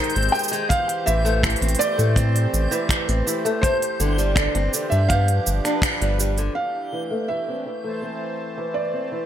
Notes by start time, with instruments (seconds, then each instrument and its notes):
Already playing: steel-string acoustic guitar D#3, accordion D#3 G#3 G4 C5, felt piano C5, synth texture G6
0.04 open hi-hat
0.10 open hi-hat
0.15 analog synth bass G#1, steel-string acoustic guitar C4, open hi-hat
0.22 open hi-hat
0.29 felt piano G5, open hi-hat
0.33 steel-string acoustic guitar D#3, shaker
0.39 shaker
0.44 shaker
0.48 steel-string acoustic guitar G#3, shaker
0.53 open hi-hat, shaker
0.69 accordion E3, felt piano F5, kick, open hi-hat, shaker
0.89 open hi-hat
1.06 analog synth bass A1, steel-string acoustic guitar E3, felt piano E5, shaker
1.25 steel-string acoustic guitar A3, shaker
1.41 steel-string acoustic guitar E3, accordion A3, finger snap, kick, open hi-hat, shaker
1.50 open hi-hat
1.56 open hi-hat
1.61 analog synth bass A1, steel-string acoustic guitar C4, open hi-hat
1.69 open hi-hat
1.75 open hi-hat
1.79 steel-string acoustic guitar E3, felt piano D5, shaker
1.98 analog synth bass A2, steel-string acoustic guitar A3, shaker
2.16 steel-string acoustic guitar C4, kick, open hi-hat, shaker
2.36 open hi-hat
2.54 analog synth bass A1, shaker
2.71 steel-string acoustic guitar E3, shaker
2.89 finger snap, kick, open hi-hat, shaker
3.08 analog synth bass A1, steel-string acoustic guitar C4, open hi-hat
3.27 steel-string acoustic guitar E3, shaker
3.45 steel-string acoustic guitar A3, open hi-hat, shaker
3.62 felt piano C5, kick, open hi-hat, shaker
3.82 open hi-hat
4.00 analog synth bass G1, steel-string acoustic guitar D3, shaker
4.05 accordion D4
4.18 steel-string acoustic guitar G3, shaker
4.35 steel-string acoustic guitar D3, felt piano D5, finger snap, kick, open hi-hat, shaker
4.55 analog synth bass G1, steel-string acoustic guitar C4, open hi-hat
4.74 steel-string acoustic guitar D3, shaker
4.90 analog synth bass G2, steel-string acoustic guitar G3, felt piano E5, shaker
5.08 accordion F3, steel-string acoustic guitar B3, felt piano F5, kick, open hi-hat
5.28 open hi-hat
5.47 analog synth bass G1, shaker
5.65 steel-string acoustic guitar D4, finger snap, open hi-hat, shaker
5.75 accordion B4
5.82 finger snap, kick, open hi-hat, shaker
6.01 analog synth bass G1, steel-string acoustic guitar G3, open hi-hat
6.20 steel-string acoustic guitar G3, shaker
6.38 steel-string acoustic guitar D3, open hi-hat, shaker
6.55 accordion E3, felt piano F5
6.92 steel-string acoustic guitar E3
7.01 accordion A3
7.11 steel-string acoustic guitar A3
7.28 steel-string acoustic guitar E3, felt piano E5
7.48 steel-string acoustic guitar C4
7.66 steel-string acoustic guitar E3
7.84 steel-string acoustic guitar A3, accordion C5 A5
8.02 steel-string acoustic guitar C4
8.57 steel-string acoustic guitar E3
8.74 felt piano D5
8.93 steel-string acoustic guitar C4
9.12 steel-string acoustic guitar E3